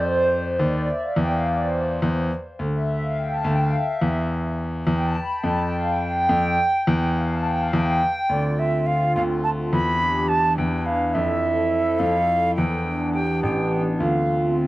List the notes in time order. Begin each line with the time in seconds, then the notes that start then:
Already playing: F2 C5
0.59 D#2
1.16 E2
2.02 E2
2.59 D2
3.44 D2
4.01 E2
4.87 E2
5.44 F2
5.89 G5
6.29 F2
6.87 E2
7.73 E2 G5
8.29 D2 D5
8.57 D3 C4 F4 E5
8.86 F5
9.16 D2 F5
9.44 A5
9.72 E2 B5
9.87 E3 D4 G4
10.28 A5
10.44 E3 D4 E4
10.57 E2 G5
10.86 F5
11.09 F5
11.13 F2 E5
11.43 F3 E4 A4
11.99 F2 F5
12.56 E2 G5
12.71 E3 B3 D4
13.13 G4 G5
13.28 E3 B3 D4
13.42 A1 G4 G5
13.98 D2 F4 F5
14.27 D3 C4 F4